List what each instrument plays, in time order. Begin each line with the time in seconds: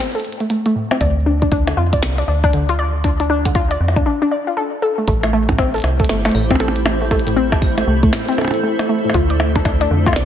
0.15 synth arpeggio sound A4, closed hi-hat
0.20 closed hi-hat
0.25 closed hi-hat
0.33 closed hi-hat
0.40 synth arpeggio sound A3, closed hi-hat
0.50 synth arpeggio sound A3, closed hi-hat
0.66 synth arpeggio sound A3, closed hi-hat
0.75 synth arpeggio sound A2
0.91 synth arpeggio sound C4, percussion blips
1.01 fm bass D2, synth arpeggio sound D5, kick, closed hi-hat
1.26 synth arpeggio sound D4
1.42 synth arpeggio sound D4, kick, closed hi-hat
1.52 synth arpeggio sound D4, kick, closed hi-hat
1.67 synth arpeggio sound D3, closed hi-hat, percussion blips
1.77 fm bass F2, synth arpeggio sound F4
1.93 synth arpeggio sound D5, kick, closed hi-hat
2.03 fm bass C2, snare, closed hi-hat
2.18 synth arpeggio sound D4, closed hi-hat
2.28 fm bass D2, synth arpeggio sound D4
2.44 synth arpeggio sound D4, kick, closed hi-hat
2.53 synth arpeggio sound D3, closed hi-hat
2.69 synth arpeggio sound F4, closed hi-hat
2.79 synth arpeggio sound D5
3.04 synth arpeggio sound D4, kick, closed hi-hat
3.20 synth arpeggio sound D4, closed hi-hat
3.30 synth arpeggio sound D4
3.45 synth arpeggio sound D3, kick, closed hi-hat
3.55 synth arpeggio sound F4, kick, closed hi-hat
3.71 synth arpeggio sound D5, closed hi-hat
3.80 fm bass F2
3.88 percussion blips
3.96 synth arpeggio sound D4, kick
4.06 synth arpeggio sound D4
4.22 synth arpeggio sound D4
4.31 synth arpeggio sound D5
4.47 synth arpeggio sound F4
4.57 synth arpeggio sound A4
4.82 synth arpeggio sound A4
4.98 synth arpeggio sound A3
5.08 fm bass A1, ambient pad A3 E4 G4 C5, synth arpeggio sound A3, kick, closed hi-hat
5.23 synth arpeggio sound A3, closed hi-hat, percussion blips
5.33 synth arpeggio sound A3
5.49 synth arpeggio sound A2, kick, closed hi-hat, percussion blips
5.58 synth arpeggio sound C4, kick, closed hi-hat, percussion blips
5.74 synth arpeggio sound A4, closed hi-hat
5.76 closed hi-hat
5.78 closed hi-hat
5.80 closed hi-hat
5.82 fm bass C2, closed hi-hat, percussion blips
6.00 synth arpeggio sound A3, kick, closed hi-hat
6.05 closed hi-hat
6.09 fm bass G1, synth arpeggio sound A3, snare
6.25 synth arpeggio sound A3, closed hi-hat, percussion blips
6.32 fm bass A1, synth arpeggio sound A2, closed hi-hat, open hi-hat
6.51 synth arpeggio sound C4, kick, closed hi-hat, percussion blips
6.55 percussion blips
6.60 synth arpeggio sound A4, closed hi-hat, percussion blips
6.68 percussion blips
6.76 closed hi-hat
6.86 synth arpeggio sound A3, percussion blips
7.01 synth arpeggio sound A3
7.11 synth arpeggio sound A3, ambient pad A4, kick, closed hi-hat, percussion blips
7.20 closed hi-hat
7.27 synth arpeggio sound A2, closed hi-hat
7.36 synth arpeggio sound C4
7.52 synth arpeggio sound A4, kick, closed hi-hat, percussion blips
7.62 kick, open hi-hat
7.78 synth arpeggio sound A3, closed hi-hat, percussion blips
7.87 fm bass C2, synth arpeggio sound A3
8.03 synth arpeggio sound A3, kick, closed hi-hat
8.13 synth arpeggio sound A2, snare, closed hi-hat, percussion blips
8.28 synth arpeggio sound C4, closed hi-hat
8.38 synth arpeggio sound A4, percussion blips
8.41 percussion blips
8.44 percussion blips
8.48 percussion blips
8.51 closed hi-hat, percussion blips
8.64 synth arpeggio sound A3
8.79 synth arpeggio sound A3, closed hi-hat, percussion blips
8.89 synth arpeggio sound A3
9.05 synth arpeggio sound A2
9.10 percussion blips
9.14 fm bass D2, ambient pad D4 F4 C5, synth arpeggio sound F4, kick, closed hi-hat
9.30 synth arpeggio sound D5, closed hi-hat
9.40 percussion blips
9.56 synth arpeggio sound D4, kick, closed hi-hat, percussion blips
9.65 synth arpeggio sound D4, kick, closed hi-hat, percussion blips
9.81 synth arpeggio sound D4, closed hi-hat
9.91 fm bass F2, synth arpeggio sound D3
10.06 synth arpeggio sound F4, kick, closed hi-hat, percussion blips
10.13 fm bass C2, synth arpeggio sound D5, snare, closed hi-hat, percussion blips